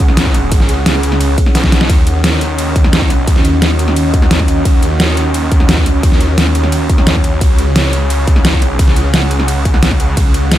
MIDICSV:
0, 0, Header, 1, 4, 480
1, 0, Start_track
1, 0, Key_signature, -6, "minor"
1, 0, Tempo, 344828
1, 718, Time_signature, 4, 2, 24, 8
1, 14729, End_track
2, 0, Start_track
2, 0, Title_t, "Ambient pad"
2, 0, Program_c, 0, 92
2, 0, Note_on_c, 0, 61, 77
2, 0, Note_on_c, 0, 68, 73
2, 0, Note_on_c, 0, 78, 88
2, 2582, Note_off_c, 0, 61, 0
2, 2583, Note_off_c, 0, 68, 0
2, 2583, Note_off_c, 0, 78, 0
2, 2637, Note_on_c, 0, 61, 78
2, 2637, Note_on_c, 0, 66, 73
2, 2638, Note_on_c, 0, 75, 87
2, 6440, Note_off_c, 0, 75, 0
2, 6478, Note_on_c, 0, 73, 85
2, 10262, Note_off_c, 0, 66, 0
2, 10280, Note_off_c, 0, 73, 0
2, 10317, Note_on_c, 0, 68, 70
2, 10318, Note_on_c, 0, 78, 83
2, 14119, Note_off_c, 0, 68, 0
2, 14158, Note_on_c, 0, 70, 72
2, 14729, Note_off_c, 0, 61, 0
2, 14729, Note_off_c, 0, 70, 0
2, 14729, Note_off_c, 0, 78, 0
2, 14729, End_track
3, 0, Start_track
3, 0, Title_t, "Detuned saw bass"
3, 0, Program_c, 1, 39
3, 0, Note_on_c, 1, 37, 99
3, 699, Note_off_c, 1, 37, 0
3, 719, Note_on_c, 1, 32, 102
3, 939, Note_off_c, 1, 32, 0
3, 959, Note_on_c, 1, 37, 100
3, 1419, Note_off_c, 1, 37, 0
3, 1438, Note_on_c, 1, 37, 99
3, 1899, Note_off_c, 1, 37, 0
3, 2158, Note_on_c, 1, 35, 97
3, 2619, Note_off_c, 1, 35, 0
3, 2638, Note_on_c, 1, 39, 99
3, 3819, Note_off_c, 1, 39, 0
3, 3839, Note_on_c, 1, 39, 100
3, 4539, Note_off_c, 1, 39, 0
3, 4559, Note_on_c, 1, 39, 99
3, 5739, Note_off_c, 1, 39, 0
3, 5759, Note_on_c, 1, 39, 103
3, 5979, Note_off_c, 1, 39, 0
3, 5999, Note_on_c, 1, 39, 101
3, 6459, Note_off_c, 1, 39, 0
3, 6478, Note_on_c, 1, 39, 98
3, 7659, Note_off_c, 1, 39, 0
3, 7678, Note_on_c, 1, 39, 100
3, 8379, Note_off_c, 1, 39, 0
3, 8398, Note_on_c, 1, 39, 100
3, 8859, Note_off_c, 1, 39, 0
3, 8878, Note_on_c, 1, 39, 103
3, 10059, Note_off_c, 1, 39, 0
3, 10079, Note_on_c, 1, 39, 100
3, 10299, Note_off_c, 1, 39, 0
3, 10319, Note_on_c, 1, 37, 98
3, 11499, Note_off_c, 1, 37, 0
3, 11519, Note_on_c, 1, 37, 99
3, 12220, Note_off_c, 1, 37, 0
3, 12239, Note_on_c, 1, 37, 96
3, 13419, Note_off_c, 1, 37, 0
3, 13438, Note_on_c, 1, 37, 104
3, 13659, Note_off_c, 1, 37, 0
3, 13678, Note_on_c, 1, 37, 97
3, 14139, Note_off_c, 1, 37, 0
3, 14158, Note_on_c, 1, 37, 100
3, 14729, Note_off_c, 1, 37, 0
3, 14729, End_track
4, 0, Start_track
4, 0, Title_t, "Drums"
4, 118, Note_on_c, 9, 40, 56
4, 238, Note_on_c, 9, 38, 118
4, 238, Note_on_c, 9, 42, 103
4, 238, Note_on_c, 9, 51, 78
4, 257, Note_off_c, 9, 40, 0
4, 359, Note_on_c, 9, 36, 60
4, 378, Note_off_c, 9, 38, 0
4, 378, Note_off_c, 9, 42, 0
4, 378, Note_off_c, 9, 51, 0
4, 479, Note_on_c, 9, 40, 36
4, 479, Note_on_c, 9, 42, 69
4, 479, Note_on_c, 9, 51, 56
4, 498, Note_off_c, 9, 36, 0
4, 618, Note_off_c, 9, 40, 0
4, 618, Note_off_c, 9, 42, 0
4, 618, Note_off_c, 9, 51, 0
4, 718, Note_on_c, 9, 42, 101
4, 718, Note_on_c, 9, 51, 75
4, 719, Note_on_c, 9, 36, 111
4, 839, Note_on_c, 9, 38, 36
4, 857, Note_off_c, 9, 42, 0
4, 857, Note_off_c, 9, 51, 0
4, 858, Note_off_c, 9, 36, 0
4, 958, Note_on_c, 9, 42, 72
4, 958, Note_on_c, 9, 51, 59
4, 978, Note_off_c, 9, 38, 0
4, 1098, Note_off_c, 9, 42, 0
4, 1098, Note_off_c, 9, 51, 0
4, 1199, Note_on_c, 9, 38, 123
4, 1199, Note_on_c, 9, 42, 105
4, 1199, Note_on_c, 9, 51, 83
4, 1319, Note_on_c, 9, 40, 49
4, 1338, Note_off_c, 9, 38, 0
4, 1338, Note_off_c, 9, 42, 0
4, 1338, Note_off_c, 9, 51, 0
4, 1438, Note_on_c, 9, 42, 75
4, 1438, Note_on_c, 9, 51, 57
4, 1458, Note_off_c, 9, 40, 0
4, 1558, Note_on_c, 9, 40, 52
4, 1578, Note_off_c, 9, 42, 0
4, 1578, Note_off_c, 9, 51, 0
4, 1678, Note_on_c, 9, 42, 95
4, 1678, Note_on_c, 9, 51, 77
4, 1698, Note_off_c, 9, 40, 0
4, 1817, Note_off_c, 9, 42, 0
4, 1817, Note_off_c, 9, 51, 0
4, 1918, Note_on_c, 9, 42, 72
4, 1918, Note_on_c, 9, 51, 55
4, 1919, Note_on_c, 9, 36, 103
4, 2038, Note_on_c, 9, 40, 58
4, 2058, Note_off_c, 9, 36, 0
4, 2058, Note_off_c, 9, 42, 0
4, 2058, Note_off_c, 9, 51, 0
4, 2158, Note_on_c, 9, 38, 65
4, 2158, Note_on_c, 9, 42, 102
4, 2158, Note_on_c, 9, 51, 82
4, 2177, Note_off_c, 9, 40, 0
4, 2278, Note_off_c, 9, 38, 0
4, 2278, Note_on_c, 9, 38, 64
4, 2279, Note_on_c, 9, 36, 62
4, 2297, Note_off_c, 9, 42, 0
4, 2297, Note_off_c, 9, 51, 0
4, 2398, Note_off_c, 9, 38, 0
4, 2398, Note_on_c, 9, 38, 89
4, 2398, Note_on_c, 9, 42, 72
4, 2398, Note_on_c, 9, 51, 54
4, 2418, Note_off_c, 9, 36, 0
4, 2518, Note_off_c, 9, 38, 0
4, 2518, Note_on_c, 9, 38, 86
4, 2537, Note_off_c, 9, 42, 0
4, 2537, Note_off_c, 9, 51, 0
4, 2638, Note_on_c, 9, 42, 101
4, 2638, Note_on_c, 9, 51, 74
4, 2639, Note_on_c, 9, 36, 117
4, 2657, Note_off_c, 9, 38, 0
4, 2778, Note_off_c, 9, 36, 0
4, 2778, Note_off_c, 9, 42, 0
4, 2778, Note_off_c, 9, 51, 0
4, 2878, Note_on_c, 9, 42, 74
4, 2878, Note_on_c, 9, 51, 53
4, 3017, Note_off_c, 9, 42, 0
4, 3017, Note_off_c, 9, 51, 0
4, 3118, Note_on_c, 9, 38, 127
4, 3118, Note_on_c, 9, 42, 106
4, 3118, Note_on_c, 9, 51, 81
4, 3257, Note_off_c, 9, 38, 0
4, 3257, Note_off_c, 9, 42, 0
4, 3257, Note_off_c, 9, 51, 0
4, 3358, Note_on_c, 9, 42, 73
4, 3358, Note_on_c, 9, 51, 56
4, 3498, Note_off_c, 9, 42, 0
4, 3498, Note_off_c, 9, 51, 0
4, 3599, Note_on_c, 9, 42, 98
4, 3599, Note_on_c, 9, 51, 75
4, 3738, Note_off_c, 9, 42, 0
4, 3738, Note_off_c, 9, 51, 0
4, 3839, Note_on_c, 9, 36, 107
4, 3839, Note_on_c, 9, 42, 71
4, 3839, Note_on_c, 9, 51, 53
4, 3959, Note_on_c, 9, 40, 60
4, 3978, Note_off_c, 9, 36, 0
4, 3978, Note_off_c, 9, 42, 0
4, 3978, Note_off_c, 9, 51, 0
4, 4079, Note_on_c, 9, 38, 123
4, 4079, Note_on_c, 9, 42, 102
4, 4079, Note_on_c, 9, 51, 78
4, 4098, Note_off_c, 9, 40, 0
4, 4199, Note_on_c, 9, 36, 63
4, 4218, Note_off_c, 9, 38, 0
4, 4218, Note_off_c, 9, 42, 0
4, 4218, Note_off_c, 9, 51, 0
4, 4319, Note_on_c, 9, 40, 38
4, 4319, Note_on_c, 9, 42, 71
4, 4319, Note_on_c, 9, 51, 53
4, 4338, Note_off_c, 9, 36, 0
4, 4458, Note_off_c, 9, 40, 0
4, 4458, Note_off_c, 9, 42, 0
4, 4458, Note_off_c, 9, 51, 0
4, 4559, Note_on_c, 9, 36, 120
4, 4559, Note_on_c, 9, 42, 93
4, 4559, Note_on_c, 9, 51, 73
4, 4679, Note_on_c, 9, 38, 38
4, 4698, Note_off_c, 9, 36, 0
4, 4698, Note_off_c, 9, 42, 0
4, 4698, Note_off_c, 9, 51, 0
4, 4799, Note_on_c, 9, 42, 69
4, 4799, Note_on_c, 9, 51, 52
4, 4818, Note_off_c, 9, 38, 0
4, 4938, Note_off_c, 9, 42, 0
4, 4938, Note_off_c, 9, 51, 0
4, 5038, Note_on_c, 9, 38, 127
4, 5038, Note_on_c, 9, 42, 100
4, 5038, Note_on_c, 9, 51, 77
4, 5159, Note_on_c, 9, 40, 47
4, 5178, Note_off_c, 9, 38, 0
4, 5178, Note_off_c, 9, 42, 0
4, 5178, Note_off_c, 9, 51, 0
4, 5278, Note_on_c, 9, 42, 69
4, 5278, Note_on_c, 9, 51, 54
4, 5298, Note_off_c, 9, 40, 0
4, 5398, Note_on_c, 9, 40, 52
4, 5417, Note_off_c, 9, 42, 0
4, 5417, Note_off_c, 9, 51, 0
4, 5519, Note_on_c, 9, 42, 98
4, 5519, Note_on_c, 9, 51, 73
4, 5538, Note_off_c, 9, 40, 0
4, 5658, Note_off_c, 9, 42, 0
4, 5658, Note_off_c, 9, 51, 0
4, 5758, Note_on_c, 9, 36, 116
4, 5758, Note_on_c, 9, 42, 68
4, 5758, Note_on_c, 9, 51, 53
4, 5878, Note_on_c, 9, 40, 61
4, 5898, Note_off_c, 9, 36, 0
4, 5898, Note_off_c, 9, 42, 0
4, 5898, Note_off_c, 9, 51, 0
4, 5998, Note_on_c, 9, 38, 127
4, 5998, Note_on_c, 9, 42, 98
4, 5998, Note_on_c, 9, 51, 74
4, 6018, Note_off_c, 9, 40, 0
4, 6118, Note_on_c, 9, 36, 64
4, 6118, Note_on_c, 9, 40, 51
4, 6137, Note_off_c, 9, 38, 0
4, 6137, Note_off_c, 9, 42, 0
4, 6137, Note_off_c, 9, 51, 0
4, 6238, Note_on_c, 9, 42, 67
4, 6238, Note_on_c, 9, 51, 51
4, 6257, Note_off_c, 9, 36, 0
4, 6257, Note_off_c, 9, 40, 0
4, 6377, Note_off_c, 9, 42, 0
4, 6377, Note_off_c, 9, 51, 0
4, 6478, Note_on_c, 9, 36, 121
4, 6478, Note_on_c, 9, 42, 93
4, 6478, Note_on_c, 9, 51, 71
4, 6617, Note_off_c, 9, 36, 0
4, 6617, Note_off_c, 9, 42, 0
4, 6617, Note_off_c, 9, 51, 0
4, 6718, Note_on_c, 9, 42, 69
4, 6718, Note_on_c, 9, 51, 51
4, 6857, Note_off_c, 9, 42, 0
4, 6857, Note_off_c, 9, 51, 0
4, 6958, Note_on_c, 9, 38, 127
4, 6958, Note_on_c, 9, 42, 98
4, 6958, Note_on_c, 9, 51, 77
4, 7097, Note_off_c, 9, 38, 0
4, 7097, Note_off_c, 9, 42, 0
4, 7097, Note_off_c, 9, 51, 0
4, 7198, Note_on_c, 9, 42, 67
4, 7198, Note_on_c, 9, 51, 52
4, 7337, Note_off_c, 9, 42, 0
4, 7337, Note_off_c, 9, 51, 0
4, 7438, Note_on_c, 9, 42, 93
4, 7438, Note_on_c, 9, 51, 70
4, 7577, Note_off_c, 9, 42, 0
4, 7577, Note_off_c, 9, 51, 0
4, 7678, Note_on_c, 9, 36, 114
4, 7678, Note_on_c, 9, 42, 66
4, 7678, Note_on_c, 9, 51, 52
4, 7798, Note_on_c, 9, 40, 59
4, 7817, Note_off_c, 9, 42, 0
4, 7817, Note_off_c, 9, 51, 0
4, 7818, Note_off_c, 9, 36, 0
4, 7918, Note_on_c, 9, 38, 127
4, 7918, Note_on_c, 9, 42, 97
4, 7918, Note_on_c, 9, 51, 71
4, 7937, Note_off_c, 9, 40, 0
4, 8038, Note_on_c, 9, 36, 68
4, 8057, Note_off_c, 9, 38, 0
4, 8057, Note_off_c, 9, 42, 0
4, 8057, Note_off_c, 9, 51, 0
4, 8158, Note_on_c, 9, 40, 37
4, 8158, Note_on_c, 9, 42, 65
4, 8158, Note_on_c, 9, 51, 52
4, 8178, Note_off_c, 9, 36, 0
4, 8297, Note_off_c, 9, 40, 0
4, 8297, Note_off_c, 9, 42, 0
4, 8297, Note_off_c, 9, 51, 0
4, 8398, Note_on_c, 9, 36, 119
4, 8399, Note_on_c, 9, 42, 92
4, 8399, Note_on_c, 9, 51, 75
4, 8518, Note_on_c, 9, 38, 39
4, 8538, Note_off_c, 9, 36, 0
4, 8538, Note_off_c, 9, 42, 0
4, 8538, Note_off_c, 9, 51, 0
4, 8638, Note_on_c, 9, 42, 65
4, 8638, Note_on_c, 9, 51, 53
4, 8658, Note_off_c, 9, 38, 0
4, 8777, Note_off_c, 9, 42, 0
4, 8777, Note_off_c, 9, 51, 0
4, 8878, Note_on_c, 9, 38, 127
4, 8878, Note_on_c, 9, 42, 96
4, 8878, Note_on_c, 9, 51, 80
4, 8998, Note_on_c, 9, 40, 45
4, 9017, Note_off_c, 9, 38, 0
4, 9017, Note_off_c, 9, 42, 0
4, 9017, Note_off_c, 9, 51, 0
4, 9118, Note_on_c, 9, 42, 67
4, 9118, Note_on_c, 9, 51, 55
4, 9137, Note_off_c, 9, 40, 0
4, 9238, Note_on_c, 9, 40, 50
4, 9257, Note_off_c, 9, 42, 0
4, 9257, Note_off_c, 9, 51, 0
4, 9358, Note_on_c, 9, 42, 91
4, 9358, Note_on_c, 9, 51, 71
4, 9377, Note_off_c, 9, 40, 0
4, 9497, Note_off_c, 9, 42, 0
4, 9497, Note_off_c, 9, 51, 0
4, 9598, Note_on_c, 9, 42, 64
4, 9598, Note_on_c, 9, 51, 51
4, 9599, Note_on_c, 9, 36, 111
4, 9718, Note_on_c, 9, 40, 57
4, 9737, Note_off_c, 9, 42, 0
4, 9737, Note_off_c, 9, 51, 0
4, 9738, Note_off_c, 9, 36, 0
4, 9838, Note_on_c, 9, 38, 127
4, 9838, Note_on_c, 9, 42, 95
4, 9838, Note_on_c, 9, 51, 75
4, 9857, Note_off_c, 9, 40, 0
4, 9958, Note_on_c, 9, 36, 67
4, 9959, Note_on_c, 9, 40, 50
4, 9977, Note_off_c, 9, 38, 0
4, 9977, Note_off_c, 9, 42, 0
4, 9977, Note_off_c, 9, 51, 0
4, 10078, Note_on_c, 9, 42, 63
4, 10078, Note_on_c, 9, 51, 51
4, 10098, Note_off_c, 9, 36, 0
4, 10098, Note_off_c, 9, 40, 0
4, 10218, Note_off_c, 9, 42, 0
4, 10218, Note_off_c, 9, 51, 0
4, 10318, Note_on_c, 9, 36, 112
4, 10319, Note_on_c, 9, 42, 90
4, 10319, Note_on_c, 9, 51, 73
4, 10458, Note_off_c, 9, 36, 0
4, 10458, Note_off_c, 9, 42, 0
4, 10458, Note_off_c, 9, 51, 0
4, 10558, Note_on_c, 9, 42, 65
4, 10558, Note_on_c, 9, 51, 55
4, 10698, Note_off_c, 9, 42, 0
4, 10698, Note_off_c, 9, 51, 0
4, 10798, Note_on_c, 9, 38, 127
4, 10798, Note_on_c, 9, 42, 95
4, 10798, Note_on_c, 9, 51, 80
4, 10937, Note_off_c, 9, 38, 0
4, 10937, Note_off_c, 9, 42, 0
4, 10937, Note_off_c, 9, 51, 0
4, 11038, Note_on_c, 9, 42, 68
4, 11038, Note_on_c, 9, 51, 58
4, 11177, Note_off_c, 9, 42, 0
4, 11177, Note_off_c, 9, 51, 0
4, 11278, Note_on_c, 9, 42, 90
4, 11278, Note_on_c, 9, 51, 76
4, 11417, Note_off_c, 9, 42, 0
4, 11417, Note_off_c, 9, 51, 0
4, 11518, Note_on_c, 9, 42, 64
4, 11518, Note_on_c, 9, 51, 54
4, 11519, Note_on_c, 9, 36, 108
4, 11639, Note_on_c, 9, 40, 55
4, 11658, Note_off_c, 9, 36, 0
4, 11658, Note_off_c, 9, 42, 0
4, 11658, Note_off_c, 9, 51, 0
4, 11758, Note_on_c, 9, 38, 126
4, 11758, Note_on_c, 9, 42, 95
4, 11758, Note_on_c, 9, 51, 76
4, 11778, Note_off_c, 9, 40, 0
4, 11879, Note_on_c, 9, 36, 64
4, 11897, Note_off_c, 9, 38, 0
4, 11897, Note_off_c, 9, 42, 0
4, 11897, Note_off_c, 9, 51, 0
4, 11998, Note_on_c, 9, 40, 35
4, 11998, Note_on_c, 9, 42, 63
4, 11998, Note_on_c, 9, 51, 53
4, 12018, Note_off_c, 9, 36, 0
4, 12137, Note_off_c, 9, 40, 0
4, 12137, Note_off_c, 9, 42, 0
4, 12137, Note_off_c, 9, 51, 0
4, 12238, Note_on_c, 9, 42, 96
4, 12238, Note_on_c, 9, 51, 77
4, 12239, Note_on_c, 9, 36, 113
4, 12358, Note_on_c, 9, 38, 36
4, 12377, Note_off_c, 9, 42, 0
4, 12377, Note_off_c, 9, 51, 0
4, 12378, Note_off_c, 9, 36, 0
4, 12478, Note_on_c, 9, 42, 66
4, 12478, Note_on_c, 9, 51, 58
4, 12498, Note_off_c, 9, 38, 0
4, 12617, Note_off_c, 9, 42, 0
4, 12617, Note_off_c, 9, 51, 0
4, 12718, Note_on_c, 9, 38, 124
4, 12718, Note_on_c, 9, 42, 99
4, 12718, Note_on_c, 9, 51, 85
4, 12838, Note_on_c, 9, 40, 43
4, 12857, Note_off_c, 9, 38, 0
4, 12857, Note_off_c, 9, 42, 0
4, 12857, Note_off_c, 9, 51, 0
4, 12959, Note_on_c, 9, 42, 69
4, 12959, Note_on_c, 9, 51, 59
4, 12978, Note_off_c, 9, 40, 0
4, 13078, Note_on_c, 9, 40, 47
4, 13098, Note_off_c, 9, 42, 0
4, 13098, Note_off_c, 9, 51, 0
4, 13198, Note_on_c, 9, 42, 93
4, 13198, Note_on_c, 9, 51, 78
4, 13217, Note_off_c, 9, 40, 0
4, 13337, Note_off_c, 9, 42, 0
4, 13337, Note_off_c, 9, 51, 0
4, 13438, Note_on_c, 9, 36, 103
4, 13438, Note_on_c, 9, 42, 67
4, 13438, Note_on_c, 9, 51, 57
4, 13558, Note_on_c, 9, 40, 56
4, 13577, Note_off_c, 9, 42, 0
4, 13577, Note_off_c, 9, 51, 0
4, 13578, Note_off_c, 9, 36, 0
4, 13678, Note_on_c, 9, 38, 123
4, 13678, Note_on_c, 9, 42, 96
4, 13678, Note_on_c, 9, 51, 80
4, 13697, Note_off_c, 9, 40, 0
4, 13798, Note_on_c, 9, 36, 61
4, 13798, Note_on_c, 9, 40, 48
4, 13817, Note_off_c, 9, 38, 0
4, 13817, Note_off_c, 9, 42, 0
4, 13817, Note_off_c, 9, 51, 0
4, 13918, Note_on_c, 9, 42, 64
4, 13918, Note_on_c, 9, 51, 54
4, 13937, Note_off_c, 9, 40, 0
4, 13938, Note_off_c, 9, 36, 0
4, 14057, Note_off_c, 9, 42, 0
4, 14057, Note_off_c, 9, 51, 0
4, 14158, Note_on_c, 9, 36, 110
4, 14158, Note_on_c, 9, 42, 94
4, 14158, Note_on_c, 9, 51, 80
4, 14297, Note_off_c, 9, 36, 0
4, 14297, Note_off_c, 9, 42, 0
4, 14297, Note_off_c, 9, 51, 0
4, 14397, Note_on_c, 9, 42, 72
4, 14397, Note_on_c, 9, 51, 57
4, 14536, Note_off_c, 9, 42, 0
4, 14536, Note_off_c, 9, 51, 0
4, 14637, Note_on_c, 9, 38, 124
4, 14637, Note_on_c, 9, 42, 100
4, 14637, Note_on_c, 9, 51, 86
4, 14729, Note_off_c, 9, 38, 0
4, 14729, Note_off_c, 9, 42, 0
4, 14729, Note_off_c, 9, 51, 0
4, 14729, End_track
0, 0, End_of_file